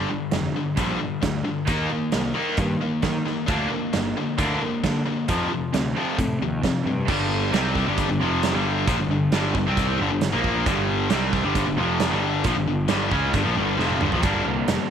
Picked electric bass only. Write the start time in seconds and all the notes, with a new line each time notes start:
0.32 F1
0.77 A#1
1.23 D2
1.68 D#2
2.14 C2
2.58 G2
3.03 D#3
3.48 D2
3.95 G1
4.38 D2
4.84 D3
5.29 F2
5.74 D2
6.18 A2
6.41 D#2
6.63 F2
6.85 G2
7.08 G1
7.54 C2
7.88 G1
8.10 G1
8.21 F1
8.55 G1
8.87 A#1
9.00 G1
9.09 G1
9.32 G1
9.55 G1
9.67 C2
10.00 G1
10.12 G1
10.33 A#1
10.66 G1
11.10 C2
11.44 G1
11.67 G1
11.79 F1
12.12 G1
12.45 A#1
12.56 G1
12.68 G1
12.91 G1
13.12 C#2
13.34 G1
13.45 A#1
13.56 G1
13.78 F1
14.01 G1
14.13 A#1
14.23 G1
14.47 C2
14.67 F1